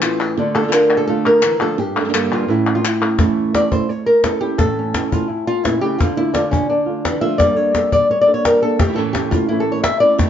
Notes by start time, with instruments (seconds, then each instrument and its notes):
Already playing: nylon-string guitar A2 E3 A4
0.02 nylon-string guitar E3 A3 C#4 E4 F4, clap
0.20 nylon-string guitar G4, clap
0.38 nylon-string guitar D3 A3 D4 F4, muted nylon-string guitar stroke
0.55 nylon-string guitar A3 D4 F4 A4
0.63 nylon-string guitar D3 A3 D4 F4
0.68 nylon-string guitar D3 A3 D4 F4
0.72 nylon-string guitar D3 A3 D4 F4 A#4, clap
0.97 nylon-string guitar A4
1.07 nylon-string guitar D3 A3 D4 F4 A4
1.26 nylon-string guitar A#4
1.42 nylon-string guitar E3, muted nylon-string guitar stroke, clap
1.59 nylon-string guitar F3 A3 D4 F4 A4
1.78 nylon-string guitar G2 G4, muted nylon-string guitar stroke
1.96 nylon-string guitar G3 A#3 D4 A4
2.00 nylon-string guitar D3 G3 A#3 D4 A4
2.05 nylon-string guitar D3 G3 A#3 D4 A4
2.09 nylon-string guitar G3 A#3 D4 A4
2.13 nylon-string guitar G2 D3 G3 A#3 D4 A4, clap
2.32 nylon-string guitar G2 F4, clap
2.48 nylon-string guitar A2 E3 A3 C#4 E4
2.75 nylon-string guitar F4
2.83 muted nylon-string guitar stroke, clap
2.87 nylon-string guitar E4
3.00 nylon-string guitar A3 C#4 E4
3.18 nylon-string guitar A2 E3 A3 C#4 E4 E5, cajon bass, cajon slap
3.53 nylon-string guitar E3 A3 C#4 E4 D5, cajon slap
3.71 nylon-string guitar A3 C#4 E4 C5, cajon bass
3.89 nylon-string guitar C#5, muted nylon-string guitar stroke
4.06 nylon-string guitar A#4
4.24 nylon-string guitar A3 C#4 E4 A4, cajon slap
4.41 nylon-string guitar A3 C#4 E4 G4, cajon slap
4.58 nylon-string guitar A2 E3 A3 C#4 E4 A4, cajon bass, cajon slap
4.79 nylon-string guitar C#4
4.94 nylon-string guitar E3 A3 C#4 E4, cajon slap
5.11 nylon-string guitar A3 C#4 E4 F4, cajon bass
5.29 nylon-string guitar E4, muted nylon-string guitar stroke
5.47 nylon-string guitar F4
5.64 nylon-string guitar A#2 A3 C#4 E4, cajon slap
5.81 nylon-string guitar C#3 A3 C#4 E4 G4
5.98 nylon-string guitar D3 A3 D4 F4, cajon bass, cajon slap
6.17 nylon-string guitar A3 D4 E4 F4
6.34 nylon-string guitar D3 A3 D4 F4, cajon slap
6.51 nylon-string guitar C#4, cajon bass
6.69 nylon-string guitar D4, muted nylon-string guitar stroke
6.86 nylon-string guitar A3 D4 F4
7.05 nylon-string guitar E3, cajon slap
7.21 nylon-string guitar F3 A3 D4 F4 E5, cajon slap
7.38 nylon-string guitar G2 D3 G3 A#3 D4 A4 D5, cajon bass, cajon slap
7.56 nylon-string guitar G3 A#3 D4 A4 C#5
7.74 nylon-string guitar G3 A#3 D4 A4 E5, cajon slap
7.92 nylon-string guitar D5, cajon bass
8.09 nylon-string guitar C#5, muted nylon-string guitar stroke
8.21 nylon-string guitar D5
8.27 nylon-string guitar G3 A#3 D4 A4
8.34 nylon-string guitar C#5
8.45 nylon-string guitar A#4, cajon slap
8.62 nylon-string guitar G3 A#3 D4 A4
8.79 nylon-string guitar A3 G4, muted nylon-string guitar stroke, cajon bass, cajon slap
8.88 nylon-string guitar E3 A3 C#4 E4
8.93 nylon-string guitar E3 A3 C#4 E4 A4
8.97 nylon-string guitar A2 E3 A3 C#4 E4
9.13 nylon-string guitar G4, cajon slap
9.31 nylon-string guitar A3 C#4 E4 F4, cajon bass
9.49 nylon-string guitar A2 E3 A3 C#4 E4
9.60 nylon-string guitar A4
9.72 nylon-string guitar C#5
9.84 nylon-string guitar E5, muted nylon-string guitar stroke, cajon slap
10.00 nylon-string guitar A3 C#4 E4 D5, cajon slap
10.18 nylon-string guitar A3 C#5, muted nylon-string guitar stroke, cajon bass, cajon slap
10.22 nylon-string guitar E3 A3 C#4 E4